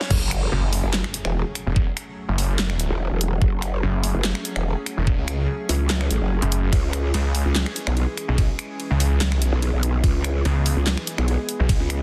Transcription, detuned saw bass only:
0, 0, Header, 1, 2, 480
1, 0, Start_track
1, 0, Key_signature, 3, "minor"
1, 0, Tempo, 413793
1, 123, Time_signature, 4, 2, 24, 8
1, 13949, End_track
2, 0, Start_track
2, 0, Title_t, "Detuned saw bass"
2, 0, Program_c, 0, 39
2, 603, Note_on_c, 0, 30, 95
2, 950, Note_off_c, 0, 30, 0
2, 1930, Note_on_c, 0, 28, 99
2, 2150, Note_off_c, 0, 28, 0
2, 2650, Note_on_c, 0, 30, 103
2, 3350, Note_off_c, 0, 30, 0
2, 4443, Note_on_c, 0, 30, 100
2, 4790, Note_off_c, 0, 30, 0
2, 5770, Note_on_c, 0, 28, 103
2, 5990, Note_off_c, 0, 28, 0
2, 6010, Note_on_c, 0, 37, 97
2, 6345, Note_off_c, 0, 37, 0
2, 7449, Note_on_c, 0, 30, 90
2, 7669, Note_off_c, 0, 30, 0
2, 7690, Note_on_c, 0, 30, 101
2, 7785, Note_off_c, 0, 30, 0
2, 8283, Note_on_c, 0, 37, 103
2, 8629, Note_off_c, 0, 37, 0
2, 9609, Note_on_c, 0, 35, 102
2, 9829, Note_off_c, 0, 35, 0
2, 10330, Note_on_c, 0, 37, 99
2, 10829, Note_off_c, 0, 37, 0
2, 10829, Note_on_c, 0, 36, 99
2, 11030, Note_off_c, 0, 36, 0
2, 12123, Note_on_c, 0, 37, 106
2, 12470, Note_off_c, 0, 37, 0
2, 13451, Note_on_c, 0, 35, 101
2, 13670, Note_off_c, 0, 35, 0
2, 13949, End_track
0, 0, End_of_file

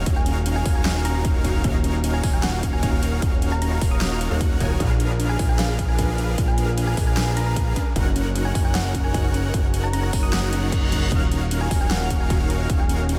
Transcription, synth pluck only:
0, 0, Header, 1, 2, 480
1, 0, Start_track
1, 0, Key_signature, -6, "minor"
1, 0, Tempo, 394737
1, 79, Time_signature, 4, 2, 24, 8
1, 16037, End_track
2, 0, Start_track
2, 0, Title_t, "Synth pluck"
2, 0, Program_c, 0, 84
2, 199, Note_on_c, 0, 80, 93
2, 311, Note_off_c, 0, 80, 0
2, 679, Note_on_c, 0, 80, 86
2, 755, Note_off_c, 0, 80, 0
2, 796, Note_on_c, 0, 80, 79
2, 874, Note_off_c, 0, 80, 0
2, 916, Note_on_c, 0, 80, 94
2, 1253, Note_off_c, 0, 80, 0
2, 1278, Note_on_c, 0, 82, 91
2, 1355, Note_off_c, 0, 82, 0
2, 1399, Note_on_c, 0, 82, 78
2, 1475, Note_off_c, 0, 82, 0
2, 2599, Note_on_c, 0, 80, 91
2, 2675, Note_off_c, 0, 80, 0
2, 2718, Note_on_c, 0, 80, 81
2, 2795, Note_off_c, 0, 80, 0
2, 2839, Note_on_c, 0, 80, 98
2, 2935, Note_off_c, 0, 80, 0
2, 2959, Note_on_c, 0, 78, 90
2, 3036, Note_off_c, 0, 78, 0
2, 3078, Note_on_c, 0, 78, 78
2, 3155, Note_off_c, 0, 78, 0
2, 3320, Note_on_c, 0, 80, 91
2, 3396, Note_off_c, 0, 80, 0
2, 3440, Note_on_c, 0, 80, 74
2, 3516, Note_off_c, 0, 80, 0
2, 4280, Note_on_c, 0, 82, 91
2, 4375, Note_off_c, 0, 82, 0
2, 4400, Note_on_c, 0, 82, 96
2, 4476, Note_off_c, 0, 82, 0
2, 4518, Note_on_c, 0, 82, 79
2, 4595, Note_off_c, 0, 82, 0
2, 4758, Note_on_c, 0, 87, 89
2, 5238, Note_off_c, 0, 87, 0
2, 6439, Note_on_c, 0, 80, 94
2, 6515, Note_off_c, 0, 80, 0
2, 6559, Note_on_c, 0, 80, 80
2, 6636, Note_off_c, 0, 80, 0
2, 6677, Note_on_c, 0, 80, 94
2, 6774, Note_off_c, 0, 80, 0
2, 6796, Note_on_c, 0, 77, 92
2, 6874, Note_off_c, 0, 77, 0
2, 6916, Note_on_c, 0, 77, 78
2, 6994, Note_off_c, 0, 77, 0
2, 7157, Note_on_c, 0, 80, 92
2, 7235, Note_off_c, 0, 80, 0
2, 7277, Note_on_c, 0, 80, 74
2, 7354, Note_off_c, 0, 80, 0
2, 7879, Note_on_c, 0, 80, 95
2, 7991, Note_off_c, 0, 80, 0
2, 8358, Note_on_c, 0, 80, 91
2, 8435, Note_off_c, 0, 80, 0
2, 8477, Note_on_c, 0, 80, 76
2, 8555, Note_off_c, 0, 80, 0
2, 8599, Note_on_c, 0, 80, 93
2, 8935, Note_off_c, 0, 80, 0
2, 8959, Note_on_c, 0, 82, 89
2, 9036, Note_off_c, 0, 82, 0
2, 9077, Note_on_c, 0, 82, 76
2, 9154, Note_off_c, 0, 82, 0
2, 10275, Note_on_c, 0, 80, 90
2, 10354, Note_off_c, 0, 80, 0
2, 10396, Note_on_c, 0, 80, 77
2, 10474, Note_off_c, 0, 80, 0
2, 10517, Note_on_c, 0, 80, 93
2, 10614, Note_off_c, 0, 80, 0
2, 10638, Note_on_c, 0, 78, 92
2, 10715, Note_off_c, 0, 78, 0
2, 10757, Note_on_c, 0, 78, 80
2, 10835, Note_off_c, 0, 78, 0
2, 10998, Note_on_c, 0, 80, 91
2, 11075, Note_off_c, 0, 80, 0
2, 11118, Note_on_c, 0, 80, 74
2, 11195, Note_off_c, 0, 80, 0
2, 11961, Note_on_c, 0, 82, 89
2, 12056, Note_off_c, 0, 82, 0
2, 12079, Note_on_c, 0, 82, 94
2, 12156, Note_off_c, 0, 82, 0
2, 12200, Note_on_c, 0, 82, 77
2, 12276, Note_off_c, 0, 82, 0
2, 12439, Note_on_c, 0, 87, 93
2, 12919, Note_off_c, 0, 87, 0
2, 14117, Note_on_c, 0, 80, 89
2, 14195, Note_off_c, 0, 80, 0
2, 14238, Note_on_c, 0, 80, 78
2, 14315, Note_off_c, 0, 80, 0
2, 14360, Note_on_c, 0, 80, 96
2, 14455, Note_off_c, 0, 80, 0
2, 14480, Note_on_c, 0, 78, 91
2, 14556, Note_off_c, 0, 78, 0
2, 14601, Note_on_c, 0, 78, 76
2, 14677, Note_off_c, 0, 78, 0
2, 14842, Note_on_c, 0, 80, 89
2, 14917, Note_off_c, 0, 80, 0
2, 14959, Note_on_c, 0, 80, 75
2, 15036, Note_off_c, 0, 80, 0
2, 15560, Note_on_c, 0, 80, 90
2, 15671, Note_off_c, 0, 80, 0
2, 16037, End_track
0, 0, End_of_file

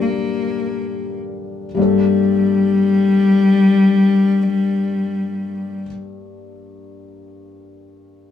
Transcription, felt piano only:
0, 0, Header, 1, 2, 480
1, 0, Start_track
1, 0, Key_signature, -2, "minor"
1, 0, Tempo, 500000
1, 7981, End_track
2, 0, Start_track
2, 0, Title_t, "Felt piano"
2, 0, Program_c, 0, 0
2, 0, Control_c, 0, 64, 127
2, 0, Note_on_c, 0, 55, 65
2, 0, Note_on_c, 0, 58, 57
2, 0, Note_on_c, 0, 62, 63
2, 0, Note_on_c, 0, 69, 66
2, 1586, Note_off_c, 0, 55, 0
2, 1589, Note_off_c, 0, 58, 0
2, 1591, Note_off_c, 0, 62, 0
2, 1594, Note_off_c, 0, 69, 0
2, 1676, Note_on_c, 0, 55, 71
2, 1697, Note_on_c, 0, 58, 63
2, 1708, Note_on_c, 0, 43, 69
2, 1719, Control_c, 0, 64, 0
2, 1719, Note_on_c, 0, 62, 63
2, 1743, Note_on_c, 0, 69, 78
2, 1879, Control_c, 0, 64, 127
2, 5589, Note_off_c, 0, 55, 0
2, 5610, Note_off_c, 0, 58, 0
2, 5621, Note_off_c, 0, 43, 0
2, 5632, Note_off_c, 0, 62, 0
2, 5656, Note_off_c, 0, 69, 0
2, 7981, End_track
0, 0, End_of_file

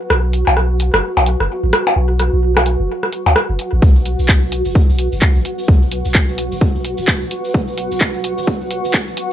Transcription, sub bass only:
0, 0, Header, 1, 2, 480
1, 0, Start_track
1, 0, Tempo, 465116
1, 105, Time_signature, 4, 2, 24, 8
1, 9628, End_track
2, 0, Start_track
2, 0, Title_t, "Sub bass"
2, 0, Program_c, 0, 38
2, 105, Note_on_c, 0, 35, 97
2, 450, Note_off_c, 0, 35, 0
2, 487, Note_on_c, 0, 35, 96
2, 930, Note_off_c, 0, 35, 0
2, 967, Note_on_c, 0, 30, 94
2, 1049, Note_off_c, 0, 30, 0
2, 1207, Note_on_c, 0, 35, 77
2, 1400, Note_off_c, 0, 35, 0
2, 1448, Note_on_c, 0, 30, 80
2, 1529, Note_off_c, 0, 30, 0
2, 1687, Note_on_c, 0, 33, 86
2, 1769, Note_off_c, 0, 33, 0
2, 2025, Note_on_c, 0, 35, 97
2, 2370, Note_off_c, 0, 35, 0
2, 2407, Note_on_c, 0, 35, 93
2, 2850, Note_off_c, 0, 35, 0
2, 2888, Note_on_c, 0, 30, 94
2, 2969, Note_off_c, 0, 30, 0
2, 3367, Note_on_c, 0, 38, 98
2, 3449, Note_off_c, 0, 38, 0
2, 3607, Note_on_c, 0, 30, 82
2, 3689, Note_off_c, 0, 30, 0
2, 3847, Note_on_c, 0, 33, 85
2, 3929, Note_off_c, 0, 33, 0
2, 3945, Note_on_c, 0, 35, 96
2, 4290, Note_off_c, 0, 35, 0
2, 4327, Note_on_c, 0, 35, 92
2, 4769, Note_off_c, 0, 35, 0
2, 4807, Note_on_c, 0, 30, 90
2, 4888, Note_off_c, 0, 30, 0
2, 5047, Note_on_c, 0, 35, 81
2, 5240, Note_off_c, 0, 35, 0
2, 5287, Note_on_c, 0, 30, 84
2, 5368, Note_off_c, 0, 30, 0
2, 5526, Note_on_c, 0, 33, 93
2, 5608, Note_off_c, 0, 33, 0
2, 5865, Note_on_c, 0, 35, 99
2, 6209, Note_off_c, 0, 35, 0
2, 6247, Note_on_c, 0, 35, 99
2, 6690, Note_off_c, 0, 35, 0
2, 6727, Note_on_c, 0, 30, 91
2, 6808, Note_off_c, 0, 30, 0
2, 6967, Note_on_c, 0, 35, 81
2, 7160, Note_off_c, 0, 35, 0
2, 7208, Note_on_c, 0, 30, 85
2, 7289, Note_off_c, 0, 30, 0
2, 7447, Note_on_c, 0, 33, 96
2, 7529, Note_off_c, 0, 33, 0
2, 7785, Note_on_c, 0, 35, 102
2, 8130, Note_off_c, 0, 35, 0
2, 8167, Note_on_c, 0, 35, 97
2, 8610, Note_off_c, 0, 35, 0
2, 8647, Note_on_c, 0, 30, 100
2, 8729, Note_off_c, 0, 30, 0
2, 8887, Note_on_c, 0, 35, 81
2, 9080, Note_off_c, 0, 35, 0
2, 9127, Note_on_c, 0, 30, 87
2, 9209, Note_off_c, 0, 30, 0
2, 9367, Note_on_c, 0, 33, 97
2, 9448, Note_off_c, 0, 33, 0
2, 9628, End_track
0, 0, End_of_file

